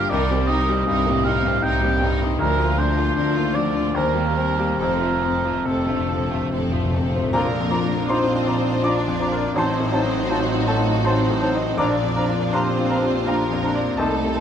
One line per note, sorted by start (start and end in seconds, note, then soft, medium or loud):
0.00 0.13 D3 medium
0.00 0.12 D#3 medium
0.00 0.13 G3 medium
0.00 0.11 A#3 soft
0.00 0.13 F4 medium
0.00 0.12 G4 medium
0.00 0.11 F5 medium
0.10 0.77 C2 medium
0.10 2.36 C2 medium
0.10 0.37 D#3 medium
0.10 0.28 C4 medium
0.10 0.29 D#4 medium
0.10 0.38 A#4 medium
0.10 0.28 A#4 medium
0.10 0.49 D5 medium
0.30 0.60 G3 medium
0.30 0.49 A#3 medium
0.30 0.49 C4 medium
0.30 0.49 G4 soft
0.48 0.68 C4 soft
0.48 0.79 D#4 medium
0.48 0.68 D#4 medium
0.48 0.68 A#4 medium
0.48 1.26 D#5 medium
0.68 0.98 G3 medium
0.68 0.86 A#3 soft
0.68 0.88 C4 medium
0.68 0.88 G4 soft
0.86 1.54 C2 medium
0.86 1.17 G2 medium
0.86 1.04 C4 medium
0.86 1.06 D#4 medium
0.86 1.06 A#4 medium
1.06 1.25 A2 soft
1.06 1.25 A#3 medium
1.06 1.26 C4 medium
1.06 1.26 G4 soft
1.24 1.55 G3 soft
1.24 1.44 C4 soft
1.24 1.45 D#4 medium
1.24 1.45 A#4 medium
1.24 1.64 F5 medium
1.43 1.74 G2 medium
1.43 1.63 A#3 medium
1.47 1.65 C4 soft
1.47 1.65 G4 medium
1.62 2.30 C2 medium
1.62 1.81 C4 medium
1.62 1.93 D#4 medium
1.62 1.82 A#4 medium
1.62 2.12 G5 medium
1.67 1.83 D#4 soft
1.81 2.12 G3 soft
1.81 2.01 A#3 soft
1.81 2.01 C4 soft
1.86 2.03 G4 medium
2.00 2.31 G2 medium
2.00 2.21 C4 soft
2.00 2.22 D#4 medium
2.05 2.22 A#4 soft
2.21 2.40 A#3 soft
2.21 2.41 C4 medium
2.21 2.40 D#4 medium
2.21 2.40 G4 soft
2.39 3.91 D2 medium
2.39 3.07 D2 medium
2.39 3.08 D2 medium
2.39 2.68 F3 medium
2.39 2.58 F3 medium
2.39 2.80 A#4 medium
2.39 2.67 A#4 medium
2.39 2.59 A#4 medium
2.44 2.59 D4 medium
2.59 2.90 F3 medium
2.59 2.78 A#3 soft
2.59 2.78 F4 soft
2.78 2.97 F3 soft
2.78 3.09 D4 medium
2.78 2.97 D4 soft
2.78 2.97 A#4 medium
2.78 3.56 C5 medium
2.97 3.28 F3 soft
2.97 3.17 A#3 soft
2.97 3.17 F4 medium
2.97 3.17 F4 soft
3.16 3.86 D2 medium
3.16 3.87 D2 medium
3.16 3.48 D3 medium
3.16 3.34 F3 medium
3.16 3.35 D4 medium
3.16 3.34 A#4 soft
3.36 3.55 D#3 soft
3.36 3.56 A#3 soft
3.36 3.56 F4 soft
3.53 3.86 F3 soft
3.53 3.76 F3 soft
3.53 3.75 D4 soft
3.53 3.75 A#4 soft
3.53 3.97 D5 medium
3.74 3.95 D3 soft
3.74 3.96 A#3 soft
3.74 3.95 F4 soft
3.94 4.77 D#2 medium
3.94 4.69 D#2 medium
3.94 4.70 D#2 medium
3.94 4.27 G3 medium
3.94 4.15 A#3 soft
3.94 4.14 C4 soft
3.94 4.14 A#4 soft
3.94 4.80 A#4 medium
3.94 4.27 C5 medium
4.14 4.49 G3 soft
4.14 4.37 G3 soft
4.14 4.37 A#3 soft
4.14 4.36 G4 soft
4.36 4.58 A#3 soft
4.36 4.58 C4 soft
4.36 4.71 C4 soft
4.36 4.58 A#4 soft
4.56 4.80 G3 soft
4.56 4.80 A#3 soft
4.56 4.79 G4 soft
4.77 5.55 F1 medium
4.77 4.87 F2 soft
4.77 5.56 F2 medium
4.77 7.30 F2 medium
4.77 5.00 A3 soft
4.77 5.00 C4 soft
4.77 4.99 A4 soft
4.77 5.67 A#4 medium
4.82 5.13 F3 medium
4.82 5.13 C5 medium
4.88 4.96 F2 soft
4.97 5.04 F2 soft
4.97 5.36 F3 soft
4.97 5.22 F4 soft
5.02 5.13 F2 soft
5.02 5.23 A3 soft
5.02 5.23 C4 soft
5.14 5.22 F2 soft
5.21 5.30 F2 soft
5.21 5.45 A3 soft
5.21 5.45 C4 soft
5.21 5.58 C4 soft
5.21 5.44 A4 soft
5.32 5.39 F2 soft
5.41 5.49 F2 soft
5.41 5.79 F3 soft
5.41 5.66 C4 soft
5.41 5.66 F4 soft
5.46 5.67 A3 soft
5.50 5.57 F2 soft
5.58 5.66 F2 soft
5.64 6.41 F1 medium
5.64 6.40 F2 medium
5.64 5.75 F2 soft
5.64 6.00 C3 medium
5.64 5.86 A3 soft
5.64 5.87 C4 soft
5.64 6.51 A4 medium
5.64 5.86 A4 soft
5.76 5.83 F2 soft
5.84 5.91 F2 soft
5.84 6.08 D3 soft
5.84 6.08 F4 soft
5.89 5.99 F2 soft
5.89 6.09 A3 soft
5.89 6.10 C4 soft
6.00 6.08 F2 soft
6.08 6.16 F2 medium
6.08 6.43 F3 soft
6.08 6.31 A3 soft
6.08 6.31 C4 soft
6.08 6.30 A4 soft
6.18 6.25 F2 soft
6.26 6.33 F2 medium
6.26 6.51 F4 soft
6.30 6.64 C3 soft
6.30 6.52 A3 soft
6.30 6.52 C4 soft
6.35 6.41 F2 medium
6.42 6.49 F2 medium
6.50 7.24 F1 medium
6.50 6.58 F2 medium
6.50 7.24 F2 medium
6.50 6.71 A3 soft
6.50 6.85 C4 soft
6.50 6.71 C4 soft
6.50 6.71 A4 soft
6.59 6.66 F2 medium
6.67 6.73 F2 medium
6.71 6.82 F2 medium
6.71 7.06 F3 soft
6.71 6.94 A3 soft
6.71 6.93 C4 soft
6.71 6.93 F4 soft
6.83 6.90 F2 medium
6.91 6.98 F2 medium
6.91 7.26 C3 soft
6.91 7.14 A3 soft
6.91 7.14 A4 soft
6.96 7.08 F2 medium
6.96 7.15 C4 soft
7.09 7.16 F2 medium
7.09 7.33 F4 soft
7.14 7.22 F2 medium
7.14 7.34 A3 soft
7.14 7.34 C4 soft
7.24 7.32 F2 medium
7.32 9.52 A#1 medium
7.32 9.53 A#1 medium
7.32 8.42 A#2 medium
7.32 9.52 F3 medium
7.32 7.50 F3 medium
7.32 8.05 A#3 medium
7.32 9.52 D4 medium
7.32 9.53 D4 medium
7.32 7.49 F4 medium
7.32 9.53 F4 medium
7.32 8.05 A#4 medium
7.32 8.06 A#4 medium
7.32 7.49 D5 medium
7.32 8.06 F5 medium
7.32 8.05 A#5 medium
7.32 7.43 A#5 medium
7.60 8.00 F2 soft
7.70 7.87 F3 soft
7.70 7.87 F4 soft
7.70 7.86 D5 soft
7.70 7.79 A#5 soft
7.85 8.25 D4 medium
8.07 8.25 F3 soft
8.07 8.83 C4 medium
8.07 8.34 D#4 soft
8.07 8.26 F4 soft
8.07 8.80 C5 medium
8.07 8.83 C5 medium
8.07 8.23 D5 medium
8.07 8.18 A#5 soft
8.07 8.80 C6 medium
8.34 8.74 D4 soft
8.46 8.62 F3 soft
8.46 8.62 F4 medium
8.46 8.63 D5 soft
8.46 8.57 A#5 soft
8.58 8.83 D#4 soft
8.82 8.99 F3 soft
8.82 9.22 D4 medium
8.82 9.56 D4 medium
8.82 9.00 F4 soft
8.82 8.99 D5 soft
8.82 9.57 D5 medium
8.82 9.53 D5 medium
8.82 9.53 A#5 soft
8.82 8.93 A#5 soft
8.82 9.53 D6 medium
9.07 9.46 F2 soft
9.19 9.35 F3 soft
9.19 9.37 F4 soft
9.19 9.37 D5 soft
9.19 9.29 A#5 soft
9.32 9.56 A#4 medium
9.55 11.74 A1 medium
9.55 11.79 A1 medium
9.55 9.71 F#3 medium
9.55 11.75 F#3 medium
9.55 10.65 C4 medium
9.55 11.76 C4 medium
9.55 11.75 D#4 medium
9.55 9.72 D#4 soft
9.55 11.75 D#4 medium
9.55 11.75 F#4 medium
9.55 10.66 C5 medium
9.55 10.65 C5 medium
9.55 9.65 A5 medium
9.55 10.65 A5 medium
9.55 10.64 C6 medium
9.59 11.76 D#4 medium
9.59 9.75 C5 soft
9.80 10.20 A2 soft
9.92 10.08 F#3 soft
9.92 10.10 D#4 soft
9.92 10.11 C5 soft
9.92 10.01 A5 soft
10.05 10.45 D#4 soft
10.29 10.45 F#3 soft
10.29 10.47 D#4 soft
10.29 10.55 F4 soft
10.29 10.47 C5 soft
10.29 10.39 A5 soft
10.55 10.95 D#4 medium
10.67 10.84 F#3 soft
10.67 11.05 A3 medium
10.67 10.83 D#4 soft
10.67 11.05 A4 medium
10.67 11.03 A4 soft
10.67 10.83 C5 soft
10.67 11.02 A5 medium
10.67 10.76 A5 soft
10.80 11.05 F4 soft
11.04 11.22 F#3 soft
11.04 11.77 C4 medium
11.04 11.44 D#4 soft
11.04 11.21 D#4 soft
11.04 11.20 C5 soft
11.04 11.79 C5 medium
11.04 11.75 C5 medium
11.04 11.14 A5 soft
11.04 11.76 A5 soft
11.04 11.75 C6 medium
11.30 11.69 A2 soft
11.41 11.58 F#3 soft
11.41 11.58 D#4 soft
11.41 11.57 C5 soft
11.41 11.50 A5 soft
11.56 11.80 D#5 medium
11.78 13.94 A#1 medium
11.78 13.95 A#1 medium
11.78 12.87 A#2 medium
11.78 11.95 F3 soft
11.78 13.96 F3 medium
11.78 13.95 A#3 medium
11.78 11.95 D4 medium
11.78 12.54 D4 medium
11.78 13.96 D4 medium
11.78 13.96 F4 medium
11.78 11.94 A#4 medium
11.78 12.49 D5 medium
11.78 12.53 D5 medium
11.78 12.49 A#5 medium
11.78 11.87 A#5 medium
11.78 12.49 D6 medium
12.03 12.43 F2 soft
12.15 12.34 F3 soft
12.15 12.31 D4 soft
12.15 12.31 A#4 soft
12.15 12.25 A#5 soft
12.28 12.68 F4 soft
12.52 12.70 F3 soft
12.52 13.27 C4 medium
12.52 12.68 D4 soft
12.52 12.79 G4 soft
12.52 12.68 A#4 medium
12.52 13.27 C5 medium
12.52 13.23 C5 medium
12.52 12.63 A#5 soft
12.52 13.22 C6 medium
12.79 13.17 F4 soft
12.89 13.08 F3 soft
12.89 13.06 D4 soft
12.89 13.05 A#4 soft
12.89 12.99 A#5 soft
13.02 13.26 G4 soft
13.25 13.44 F3 soft
13.25 13.99 A#3 medium
13.25 13.44 D4 soft
13.25 13.65 F4 medium
13.25 13.41 A#4 soft
13.25 13.99 A#4 medium
13.25 13.96 A#4 medium
13.25 13.96 F5 medium
13.25 13.95 A#5 medium
13.25 13.36 A#5 soft
13.50 13.89 F2 medium
13.62 13.79 F3 medium
13.62 13.81 D4 medium
13.62 13.78 A#4 soft
13.62 13.72 A#5 soft
13.75 13.99 D5 medium
13.97 14.40 C2 medium
13.97 14.15 D#3 medium
13.97 14.40 A3 medium
13.97 14.40 C4 medium
13.97 14.17 D#4 medium
13.97 14.40 D#4 medium
13.97 14.40 A4 medium
13.97 14.15 C5 medium
13.97 14.40 D#5 medium
13.97 14.40 A5 medium
13.97 14.08 A5 medium
14.24 14.40 C3 soft
14.34 14.40 D#3 medium
14.34 14.40 C5 soft
14.34 14.40 A5 soft